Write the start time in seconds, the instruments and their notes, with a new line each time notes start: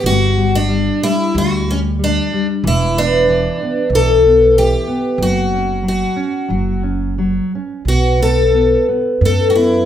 0.04 upright bass G1, nylon-string guitar G3, twelve-string acoustic guitar F#4
0.37 nylon-string guitar G3
0.55 twelve-string acoustic guitar D4
0.69 nylon-string guitar G3
1.03 nylon-string guitar G3, twelve-string acoustic guitar E4
1.35 upright bass D2, nylon-string guitar G3, twelve-string acoustic guitar F#4
1.68 nylon-string guitar G3, twelve-string acoustic guitar C#4
1.99 nylon-string guitar G3
2.04 twelve-string acoustic guitar D4
2.33 nylon-string guitar G3
2.64 upright bass E1, nylon-string guitar E3, twelve-string acoustic guitar E4
2.97 nylon-string guitar B3, twelve-string acoustic guitar D4
3.29 nylon-string guitar E3
3.62 nylon-string guitar B3
3.90 upright bass B1, nylon-string guitar E3
3.95 twelve-string acoustic guitar A4
4.26 nylon-string guitar B3
4.58 nylon-string guitar E3, twelve-string acoustic guitar G4
4.88 nylon-string guitar B3
5.18 upright bass F#1, nylon-string guitar F#3
5.23 twelve-string acoustic guitar F#4
5.53 nylon-string guitar C#4
5.83 nylon-string guitar F#3
5.88 twelve-string acoustic guitar F#4
6.16 nylon-string guitar C#4
6.48 upright bass F#1, nylon-string guitar F#3
6.83 nylon-string guitar C#4
7.18 nylon-string guitar F#3
7.55 nylon-string guitar C#4
7.85 upright bass B1, nylon-string guitar B3, twelve-string acoustic guitar F#4
8.20 nylon-string guitar B3, twelve-string acoustic guitar A4
8.54 nylon-string guitar B3
8.88 nylon-string guitar B3
9.21 upright bass F#2, nylon-string guitar B3
9.25 twelve-string acoustic guitar A4
9.50 twelve-string acoustic guitar F#4
9.55 nylon-string guitar B3, twelve-string acoustic guitar E4